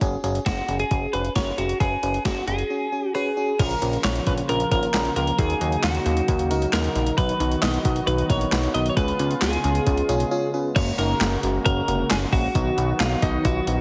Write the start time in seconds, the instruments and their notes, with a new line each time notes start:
0.01 analog synth bass F#1, fm electric piano C#4 F#4 G#4, kick, closed hi-hat
0.24 analog synth bass F#1, fm electric piano C#4 F#4 G#4, closed hi-hat
0.35 closed hi-hat
0.46 analog synth bass F#1, fm electric piano C#4 F#4, clean electric guitar F#4, kick, snare, closed hi-hat
0.68 analog synth bass F#1, fm electric piano C#4 F#4 G#4, closed hi-hat
0.79 clean electric guitar G#4, closed hi-hat
0.91 analog synth bass F#1, fm electric piano C#4 F#4 G#4, kick, closed hi-hat
1.13 analog synth bass F1, fm electric piano C#4 F#4 G#4, clean electric guitar B4, closed hi-hat
1.25 closed hi-hat
1.35 analog synth bass F#1, fm electric piano C#4 F#4 A#4, clean electric guitar C#5, kick, snare, closed hi-hat
1.58 analog synth bass F1, fm electric piano C#4 F#4 G#4, clean electric guitar F#4, closed hi-hat
1.69 closed hi-hat
1.80 analog synth bass F#1, fm electric piano C#4 F#4 B4, clean electric guitar G#4, kick, closed hi-hat
2.03 analog synth bass F#1, fm electric piano C#4 F#4 B4, closed hi-hat
2.14 closed hi-hat
2.25 analog synth bass F#1, fm electric piano C#4 F#4 G#4, clean electric guitar F#4, kick, snare, closed hi-hat
2.48 analog synth bass F#1, fm electric piano C#4 F#4 G#4, clean electric guitar G#4, closed hi-hat
2.58 closed hi-hat
2.70 fm electric piano C#4 F#4 G#4
2.92 fm electric piano C#4 F#4 G#4
3.15 fm electric piano C#4 F#4 B4, clean electric guitar G#4
3.37 fm electric piano C#4 F#4 G#4
3.59 analog synth bass A#1, analog synth pad C#3 F3 A#3 F4, fm electric piano C#4 F4 A#4, clean electric guitar A#4, kick, closed hi-hat, crash
3.71 closed hi-hat
3.82 analog synth bass A#1, fm electric piano C#4 F4 A#4, closed hi-hat
3.93 closed hi-hat
4.04 analog synth bass A#1, fm electric piano C#4 F4 A#4, clean electric guitar C#5, snare, clap, closed hi-hat
4.15 closed hi-hat
4.27 analog synth bass A#1, fm electric piano C#4 F4 C#5, clean electric guitar B4, kick, closed hi-hat
4.38 closed hi-hat
4.49 analog synth bass A#1, fm electric piano C#4 F4 A#4, clean electric guitar A#4, closed hi-hat
4.60 closed hi-hat
4.71 analog synth bass G#1, fm electric piano C#4 F4 A#4, clean electric guitar A#4, kick, closed hi-hat
4.83 closed hi-hat
4.94 analog synth bass A#1, fm electric piano C#4 F4 A#4, snare, clap, closed hi-hat
5.05 closed hi-hat
5.16 analog synth bass C#2, fm electric piano C#4 F4 A#4, clean electric guitar A#4, closed hi-hat
5.27 closed hi-hat
5.39 analog synth bass D#2, analog synth pad C#3 F#3 D#4, fm electric piano D#4 F#4 A#4, clean electric guitar G#4, kick, closed hi-hat
5.50 closed hi-hat
5.61 analog synth bass D#2, fm electric piano D#4 F#4 G#4, closed hi-hat
5.72 closed hi-hat
5.83 analog synth bass D#2, fm electric piano D#4 F#4 A#4, clean electric guitar F#4, snare, clap, closed hi-hat
5.95 closed hi-hat
6.06 analog synth bass D#2, fm electric piano D#4 F#4 A#4, closed hi-hat
6.17 closed hi-hat
6.28 analog synth bass D#2, fm electric piano D#4 F#4 A#4, kick, closed hi-hat
6.39 closed hi-hat
6.50 analog synth bass C#2, fm electric piano D#4 F#4 A#4, closed hi-hat
6.62 closed hi-hat
6.73 analog synth bass D#2, fm electric piano D#4 F#4 A#4, clean electric guitar A#4, snare, clap, closed hi-hat
6.84 closed hi-hat
6.95 analog synth bass A#1, fm electric piano D#4 F#4 A#4, closed hi-hat
7.07 closed hi-hat
7.18 analog synth bass B1, analog synth pad D#3 B3 F#4, synth arpeggio sound F#3, fm electric piano D#4 F#4 B4, clean electric guitar B4, kick, closed hi-hat
7.29 closed hi-hat
7.40 analog synth bass B1, synth arpeggio sound D#4, fm electric piano D#4 F#4 B4, closed hi-hat
7.52 closed hi-hat
7.62 analog synth bass B1, synth arpeggio sound B3, fm electric piano D#4 F#4 B4, clean electric guitar D#5, snare, clap, closed hi-hat
7.74 closed hi-hat
7.85 analog synth bass B1, fm electric piano D#4 F#4 B4, synth arpeggio sound F#4, kick, closed hi-hat
7.96 closed hi-hat
8.07 analog synth bass B1, fm electric piano D#4 F#4 B4, synth arpeggio sound D#4, clean electric guitar B4, closed hi-hat
8.18 closed hi-hat
8.30 analog synth bass A#1, fm electric piano D#4 F#4 A#4, clean electric guitar C#5, synth arpeggio sound F#5, kick, closed hi-hat
8.41 closed hi-hat
8.52 analog synth bass B1, fm electric piano D#4 F#4 B4, synth arpeggio sound F#4, snare, clap, closed hi-hat
8.63 closed hi-hat
8.74 analog synth bass B1, fm electric piano D#4 F#4 A#4, clean electric guitar D#5, synth arpeggio sound B5, closed hi-hat
8.86 clean electric guitar C#5, closed hi-hat
8.97 analog synth bass C#2, analog synth pad C#3 G#3 F4, synth arpeggio sound G#3, fm electric piano C#4 F4 G#4, clean electric guitar B4, kick, closed hi-hat
9.08 closed hi-hat
9.19 analog synth bass C#2, synth arpeggio sound C#4, fm electric piano C#4 F4 G#4, closed hi-hat
9.31 closed hi-hat
9.41 analog synth bass C#2, synth arpeggio sound B3, fm electric piano C#4 F4 G#4, clean electric guitar G#4, snare, clap, closed hi-hat
9.53 closed hi-hat
9.64 analog synth bass C#2, fm electric piano C#4 F4 G#4, synth arpeggio sound F4, closed hi-hat
9.75 closed hi-hat
9.86 analog synth bass C#2, synth arpeggio sound C#4, fm electric piano C#4 F4 G#4, kick, closed hi-hat
9.97 closed hi-hat
10.09 analog synth bass B1, fm electric piano C#4 F4 G#4, synth arpeggio sound G#4, closed hi-hat
10.20 closed hi-hat
10.31 fm electric piano C#4 F4 G#4, synth arpeggio sound F4
10.54 fm electric piano C#4 F4 G#4, synth arpeggio sound B4
10.76 analog synth bass F#1, analog synth pad C#3 G#3 A#3 F#4, fm electric piano A#3 C#4 F#4, clean electric guitar C#5, kick, closed hi-hat, crash
10.98 analog synth bass F#1, fm electric piano A#3 C#4 D#4, clean electric guitar A#4, closed hi-hat
11.21 analog synth bass F#1, fm electric piano A#3 C#4 F#4, snare, clap, closed hi-hat
11.43 analog synth bass F#1, fm electric piano A#3 C#4 F#4, closed hi-hat
11.65 analog synth bass F#1, fm electric piano A#3 C#4 F#4, clean electric guitar A#4, kick, closed hi-hat
11.88 analog synth bass F1, fm electric piano A#3 C#4 F#4, closed hi-hat
12.10 analog synth bass F#1, fm electric piano A#3 C#4 F#4, clean electric guitar G#4, snare, clap, closed hi-hat
12.33 analog synth bass A#1, fm electric piano A#3 C#4 F#4, clean electric guitar F#4, kick, open hi-hat
12.55 analog synth bass B1, analog synth pad D#3 F#3 B3, fm electric piano B3 D#4 F#4, kick, closed hi-hat
12.77 analog synth bass B1, fm electric piano B3 D#4 F#4, closed hi-hat
13.00 analog synth bass B1, fm electric piano B3 D#4 F#4, clean electric guitar F4, snare, clap, closed hi-hat
13.22 analog synth bass B1, fm electric piano B3 D#4 F#4, clean electric guitar D#4, kick, closed hi-hat
13.45 analog synth bass B1, fm electric piano B3 D#4 F4, clean electric guitar F#4, kick, closed hi-hat
13.67 analog synth bass A#1, fm electric piano B3 D#4 F#4, closed hi-hat